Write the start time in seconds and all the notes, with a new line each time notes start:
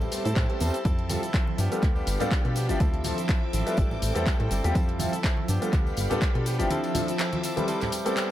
Already playing: G4 C5 A5
0.00 C4 E4 A4, tambourine, low conga
0.11 G3 B3 C4 E4 A4, open hi-hat, tambourine, shaker
0.25 A2 C4 E4 A4, closed hi-hat, tambourine, shaker
0.36 A2 G3 C4, kick, clap, closed hi-hat, tambourine, shaker
0.49 G3 B3 C4 E4 A4, closed hi-hat
0.60 E2 G3 B3 C4 E4 A4, open hi-hat, tambourine, shaker
0.73 C4 E4 A4, closed hi-hat, tambourine, shaker
0.85 F2 F3 C4 E4 A4 E5, kick, closed hi-hat, tambourine, shaker
0.99 closed hi-hat
1.09 G3 C4 E4 F4 A4, open hi-hat, tambourine, high conga, low conga, shaker
1.22 E4 A4, closed hi-hat, tambourine, shaker
1.33 C4 E4 A4, kick, clap, closed hi-hat, tambourine, shaker
1.47 high conga
1.57 G2 F3 B3 D4 G4 F5 B5, open hi-hat, tambourine, shaker
1.71 G3 B3 D4 F4 A4, closed hi-hat, tambourine, shaker
1.82 D2, kick, clap, closed hi-hat, tambourine, shaker
1.95 B3 D4 G4, tambourine
2.07 G1, open hi-hat, tambourine, shaker
2.20 G3 B3 D4 F4 G4 A4, closed hi-hat, tambourine, low conga, shaker
2.31 F3 B3 D4 G4, kick, clap, closed hi-hat, tambourine, shaker
2.44 B2 G3 B3 D4 F4 G4 A4, closed hi-hat
2.55 F3 B3 D4 G4, open hi-hat, tambourine, shaker
2.69 G1 F3 B3 C4 D4 E4 G4, closed hi-hat, tambourine, shaker
2.80 D2 F3 C4 E4 A4 E5 D6, kick, closed hi-hat, tambourine, high conga, shaker
2.94 closed hi-hat
3.04 F3 C4 D4 E4 A4, open hi-hat, tambourine, high conga, low conga, shaker
3.17 C4 E4 A4, closed hi-hat, tambourine, shaker
3.28 F3 C4 E4 A4, kick, clap, closed hi-hat, tambourine, shaker
3.53 A1 F3 C4 E4 A4, open hi-hat, tambourine, shaker
3.66 G3 C4 E4 A4 B4, closed hi-hat, tambourine, shaker
3.77 A1 G3 C4 E4 A4 G5, kick, closed hi-hat, tambourine, shaker
3.90 C4 E4 A4, tambourine, low conga
4.02 A1, open hi-hat, tambourine, shaker
4.15 E2 G3 B3 C4 E4 A4, closed hi-hat, tambourine, shaker
4.26 G3 A4, kick, clap, closed hi-hat, tambourine, shaker
4.39 A2 G3 B3 C4 E4 A4, closed hi-hat
4.50 G1 G3 C4 E4 A4, open hi-hat, tambourine, shaker
4.64 E2 G3 C4 E4 F4 G4 A4, closed hi-hat, tambourine, shaker
4.75 F2 F3 C4 E4 A4 E5 A5, kick, closed hi-hat, tambourine, shaker
4.89 closed hi-hat
4.99 G3 C4 E4 F4 A4, open hi-hat, tambourine, high conga, low conga, shaker
5.12 E4 A4, closed hi-hat, tambourine, shaker
5.23 C4 E4 A4, kick, clap, closed hi-hat, tambourine, shaker
5.37 high conga
5.48 G2 F3 B3 D4 G4 F5 B5, open hi-hat, tambourine, shaker
5.61 G3 B3 D4 F4 A4, closed hi-hat, tambourine, shaker
5.73 D2, kick, clap, closed hi-hat, tambourine, shaker
5.86 B3 D4 G4, tambourine
5.97 G1, open hi-hat, tambourine, shaker
6.10 G3 B3 D4 F4 G4 A4, closed hi-hat, tambourine, low conga, shaker
6.21 F3 B3 D4 G4, kick, clap, closed hi-hat, tambourine, shaker
6.34 B2 G3 B3 D4 F4 G4 A4, closed hi-hat
6.45 F3 B3 D4 G4, open hi-hat, tambourine, shaker
6.59 G1 F3 B3 C4 D4 E4 G4, closed hi-hat, tambourine, shaker
6.70 F3 C4 E4 A4 E5 D6, closed hi-hat, tambourine, high conga, shaker
6.84 closed hi-hat, tambourine
6.94 F3 C4 D4 E4 A4, open hi-hat, tambourine, high conga, low conga, shaker
7.07 C4 E4 A4, closed hi-hat, tambourine, shaker
7.19 F3 C4 E4 A4, clap, closed hi-hat, tambourine, shaker
7.33 closed hi-hat, high conga
7.43 F3 C4 E4 A4, open hi-hat, tambourine, shaker
7.56 G3 C4 E4 A4 B4, closed hi-hat, tambourine, high conga, shaker
7.67 G3 C4 E4 A4 G5, closed hi-hat, tambourine, shaker
7.81 C4 E4 A4, clap, closed hi-hat, tambourine, low conga
7.92 open hi-hat, tambourine, shaker
8.05 G3 B3 C4 E4 A4, closed hi-hat, tambourine, shaker
8.16 G3 C4 E4 A4, clap, closed hi-hat, tambourine, shaker